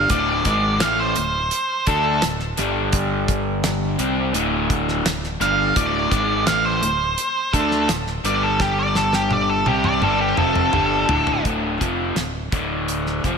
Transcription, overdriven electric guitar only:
0.09 0.44 D2 medium
0.09 0.44 A2 loud
0.09 0.45 D3 medium
0.45 0.80 G#2 medium
0.45 0.80 D#3 medium
0.45 0.81 G#3 medium
0.80 1.15 A2 medium
0.80 1.15 E3 medium
0.80 1.16 A3 loud
1.16 1.45 D2 medium
1.16 1.45 A2 medium
1.87 2.21 D3 medium
1.87 2.22 A3 medium
1.87 2.22 D4 medium
2.22 2.51 D2 medium
2.22 2.51 A2 medium
2.57 3.98 G2 medium
2.57 3.98 D3 medium
2.57 3.98 G3 medium
3.99 4.33 C3 medium
3.99 4.34 G3 medium
3.99 4.34 C4 medium
4.34 5.04 D2 medium
4.34 5.04 A2 medium
4.34 5.05 D3 loud
5.05 5.33 D2 medium
5.05 5.34 A2 medium
5.40 5.74 G2 medium
5.40 5.75 D3 medium
5.40 5.75 G3 medium
5.75 6.10 D2 medium
5.75 6.10 A2 loud
5.75 6.11 D3 medium
6.11 6.45 G#2 medium
6.11 6.46 D#3 loud
6.11 6.46 G#3 loud
6.46 6.81 A2 medium
6.46 6.81 E3 loud
6.46 6.82 A3 loud
6.83 7.11 D2 medium
6.83 7.11 A2 medium
7.54 7.88 D3 medium
7.54 7.88 A3 medium
7.54 7.88 D4 medium
7.88 8.17 D2 medium
7.88 8.17 A2 medium
8.24 9.65 G2 medium
8.24 9.66 D3 medium
8.24 9.66 G3 loud
9.66 10.01 C3 medium
9.66 10.01 G3 medium
9.66 10.01 C4 loud
10.02 10.36 G2 medium
10.02 10.37 D3 medium
10.02 10.37 G3 loud
10.37 10.72 F2 medium
10.37 10.72 C3 medium
10.37 10.72 F3 loud
10.73 11.08 G2 medium
10.73 11.08 D3 loud
10.73 11.08 G3 loud
11.08 11.43 D2 medium
11.08 11.44 A2 medium
11.08 11.44 D3 medium
11.44 11.79 D2 medium
11.44 11.79 A2 medium
11.44 11.80 D3 medium
11.80 12.15 F2 medium
11.80 12.15 C3 medium
11.80 12.16 F3 medium
12.16 12.45 D2 medium
12.16 12.45 A2 medium
12.52 13.23 D2 medium
12.52 13.23 A2 medium
12.52 13.23 D3 medium
13.24 13.38 F2 medium
13.24 13.38 C3 medium
13.24 13.38 F3 medium

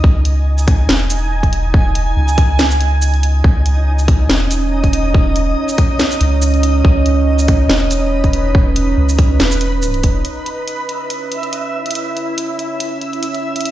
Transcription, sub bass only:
0.04 0.87 C#2 medium
0.89 2.15 E1 loud
2.16 3.43 C#2 loud
3.44 4.28 C#2 loud
4.29 5.55 E1 loud
6.21 6.83 C#2 loud
6.85 7.68 C#2 loud
7.69 8.96 E1 loud
8.97 9.38 C#2 loud
9.40 10.02 E1 loud
10.04 10.23 E1 medium

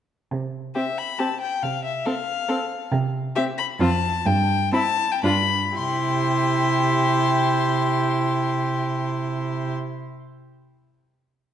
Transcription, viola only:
0.76 0.84 C4 soft
1.19 1.27 C4 soft
2.06 2.14 C4 soft
2.48 2.56 C4 soft
3.37 3.45 C4 soft
3.80 3.88 C4 soft
4.72 4.80 C4 soft
5.23 5.31 D4 soft
5.76 9.71 E4 medium

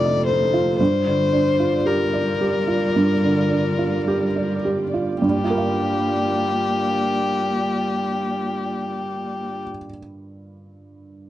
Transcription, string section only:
0.00 0.78 A3 medium
0.00 0.78 D#4 medium
0.00 0.75 F4 medium
0.76 5.23 G3 medium
0.76 5.18 F4 soft
0.76 5.22 D5 soft
5.24 9.63 A#3 soft
5.24 9.63 F4 soft
5.24 9.64 D5 soft

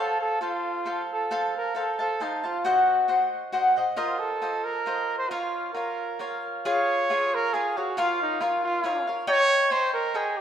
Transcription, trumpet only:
0.00 0.19 A4 medium
0.21 0.40 A4 medium
0.42 1.06 F4 medium
1.12 1.53 A4 medium
1.57 1.75 A#4 medium
1.77 1.98 A4 medium
2.01 2.24 A4 medium
2.22 2.46 D#4 medium
2.44 2.66 F4 medium
2.64 3.53 F#4 medium
3.96 4.21 F4 medium
4.19 4.66 A4 medium
4.64 5.17 A#4 loud
5.18 5.31 C5 medium
5.30 5.73 F4 medium
5.74 6.39 A#4 medium
6.67 7.36 C#5 loud
7.35 7.55 A#4 loud
7.53 7.79 G#4 medium
7.77 8.01 F#4 medium
8.00 8.22 F4 medium
8.22 8.43 D#4 medium
8.41 8.63 F4 medium
8.63 9.04 F4 medium
9.29 9.73 C#5 loud
9.71 9.93 C5 loud
9.94 10.17 A#4 medium
10.16 10.38 G#4 medium
10.37 10.41 G4 medium

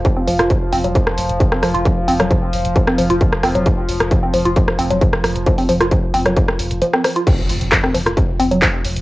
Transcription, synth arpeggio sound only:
0.05 0.09 F3 loud
0.17 0.25 C4 medium
0.28 0.31 F3 medium
0.39 0.43 F4 medium
0.50 0.59 F3 medium
0.73 0.79 C4 loud
0.84 0.90 F#3 medium
0.95 0.99 F3 medium
1.40 1.44 F3 loud
1.52 1.60 C4 medium
1.63 1.67 F3 medium
1.75 1.78 F4 medium
1.85 1.94 F3 medium
2.08 2.14 C4 loud
2.20 2.25 F#3 medium
2.31 2.34 F3 medium
2.76 2.79 F3 loud
2.87 2.96 C4 medium
2.98 3.02 F3 medium
3.10 3.13 F4 medium
3.21 3.30 F3 medium
3.43 3.49 C4 loud
3.55 3.61 F#3 medium
3.66 3.69 F3 medium
4.11 4.15 F3 loud
4.23 4.31 C4 medium
4.34 4.37 F3 medium
4.45 4.49 F4 medium
4.56 4.65 F3 medium
4.79 4.85 C4 loud
4.90 4.96 F#3 medium
5.01 5.05 F3 medium
5.46 5.50 F3 loud
5.58 5.66 C4 medium
5.69 5.72 F3 medium
5.81 5.84 F4 medium
5.91 6.00 F3 medium
6.14 6.20 C4 loud
6.26 6.31 F#3 medium
6.37 6.40 F3 medium
6.82 6.85 F3 loud
6.93 7.02 C4 medium
7.04 7.08 F3 medium
7.16 7.19 F4 medium
7.27 7.30 F3 medium
7.72 7.75 F3 loud
7.84 7.92 C4 medium
7.95 7.98 F3 medium
8.06 8.10 F4 medium
8.17 8.26 F3 medium
8.40 8.46 C4 loud
8.51 8.57 F#3 medium
8.62 8.66 F3 medium

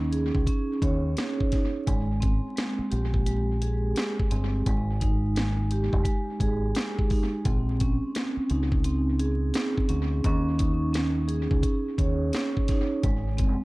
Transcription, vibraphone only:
0.00 0.47 C#4 medium
0.00 0.82 D#4 medium
0.12 1.52 G#4 medium
0.47 1.15 C#4 medium
0.83 1.87 C#5 medium
1.17 1.87 C#4 medium
1.54 1.88 D#4 medium
1.87 2.55 G#3 medium
2.20 3.61 C4 medium
2.56 3.25 G#3 medium
2.91 4.31 G4 medium
3.27 3.97 G#3 medium
3.62 4.67 G#4 medium
3.98 4.66 G#3 medium
4.31 4.66 C4 medium
4.68 5.34 G#3 medium
5.00 6.40 D#4 medium
5.36 6.02 G#3 medium
5.71 7.11 G4 medium
6.04 6.75 G#3 medium
6.41 7.45 G#4 medium
6.77 7.46 G#3 medium
7.12 7.46 D#4 medium
7.45 8.14 C4 medium
7.80 9.20 C#4 medium
8.15 8.83 C4 medium
8.51 9.90 D#4 medium
8.85 9.53 C4 medium
9.19 10.24 G#4 medium
9.54 10.24 C4 medium
9.89 10.24 C#4 medium
10.27 10.92 C#4 medium
10.59 11.98 D#4 medium
10.93 11.61 C#4 medium
11.28 12.68 G#4 medium
11.63 12.32 C#4 medium
11.99 13.04 C#5 medium
12.33 13.03 C#4 medium
12.70 13.04 D#4 medium
13.03 13.64 G#3 medium
13.37 13.64 C4 medium

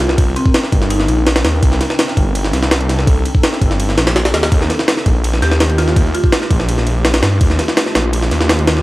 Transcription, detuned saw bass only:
0.00 0.17 C2 loud
0.18 0.34 C2 loud
0.72 1.07 G1 medium
1.08 1.44 A#1 medium
1.45 1.61 D#2 medium
1.63 1.79 C2 loud
2.17 2.52 G1 medium
2.53 3.06 C2 loud
3.07 3.24 C2 loud
3.61 3.96 G1 medium
3.98 4.33 A#1 loud
4.34 4.50 D#2 medium
4.52 4.68 D#2 loud
5.06 5.41 A#1 medium
5.42 5.95 D#2 loud
5.96 6.13 D#2 loud
6.50 6.85 A#1 medium
6.87 7.22 A#1 medium
7.23 7.39 G2 medium
7.41 7.57 D#2 loud
7.95 8.30 A#1 medium
8.31 8.82 D#2 loud

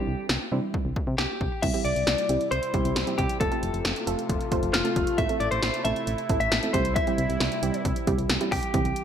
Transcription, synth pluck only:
0.00 0.44 G3 medium
0.00 0.43 C4 medium
0.00 0.43 D4 medium
0.00 0.43 E4 medium
0.52 1.27 G3 medium
0.52 1.27 C4 medium
0.52 1.27 D4 medium
0.52 1.27 E4 loud
1.63 1.72 G3 medium
1.63 1.72 C4 medium
1.63 1.72 E4 medium
1.63 1.72 G4 medium
1.74 2.21 G3 medium
1.74 2.21 C4 medium
1.74 2.21 E4 medium
1.74 2.21 G4 medium
2.29 2.67 G3 medium
2.29 2.67 C4 medium
2.29 2.67 E4 medium
2.29 2.67 G4 medium
2.74 3.02 G3 medium
2.74 3.02 C4 medium
2.74 3.02 E4 medium
2.74 3.02 G4 medium
3.07 3.36 G3 medium
3.07 3.36 C4 medium
3.07 3.36 E4 medium
3.07 3.36 G4 medium
3.41 3.50 A3 medium
3.41 3.50 C4 medium
3.41 3.50 F4 medium
3.41 3.50 A4 medium
3.52 3.99 A3 medium
3.52 3.99 C4 medium
3.52 3.99 F4 medium
3.52 3.99 A4 medium
4.07 4.45 A3 medium
4.07 4.45 C4 medium
4.07 4.45 F4 medium
4.07 4.45 A4 loud
4.51 4.80 A3 medium
4.51 4.80 C4 medium
4.51 4.80 F4 medium
4.51 4.80 C5 loud
4.85 5.13 A3 medium
4.85 5.13 C4 medium
4.85 5.13 F4 medium
4.85 5.13 A4 medium
5.18 5.28 A3 medium
5.18 5.28 C4 medium
5.18 5.28 E4 medium
5.18 5.28 A4 medium
5.29 5.77 A3 medium
5.29 5.77 C4 medium
5.29 5.77 E4 medium
5.29 5.77 A4 medium
5.85 6.23 A3 medium
5.85 6.23 C4 medium
5.85 6.23 E4 medium
5.85 6.23 A4 medium
6.29 6.58 A3 medium
6.29 6.58 C4 medium
6.29 6.58 E4 medium
6.29 6.58 A4 medium
6.63 6.74 A3 medium
6.63 6.73 C4 medium
6.63 6.73 E4 medium
6.63 6.74 A4 medium
6.74 7.02 G3 medium
6.74 7.02 C4 medium
6.74 7.02 E4 medium
6.74 7.02 G4 medium
7.07 7.55 G3 medium
7.07 7.55 C4 medium
7.07 7.55 E4 medium
7.07 7.55 G4 medium
7.63 8.01 G3 medium
7.63 8.01 C4 medium
7.63 8.01 E4 medium
7.63 8.01 G4 loud
8.07 8.36 G3 medium
8.07 8.36 C4 medium
8.07 8.36 E4 medium
8.07 8.36 G4 loud
8.41 8.69 G3 medium
8.41 8.69 C4 medium
8.41 8.69 E4 medium
8.41 8.69 G4 loud
8.74 9.04 E3 medium
8.74 9.04 G3 medium
8.74 9.04 C4 medium
8.74 9.04 E4 medium
8.74 9.04 G4 medium

